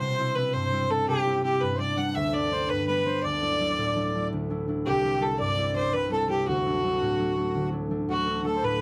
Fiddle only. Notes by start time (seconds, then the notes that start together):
0.00 C5
0.35 B4
0.53 C5
0.90 A4
1.08 G4
1.44 G4
1.61 B4
1.80 D5
1.97 F#5
2.15 E5
2.33 D5
2.69 B4
2.87 B4
3.23 D5
4.86 G4
5.22 A4
5.39 D5
5.76 C5
5.93 B4
6.12 A4
6.29 G4
6.47 F#4
8.11 F#4
8.46 A4
8.64 B4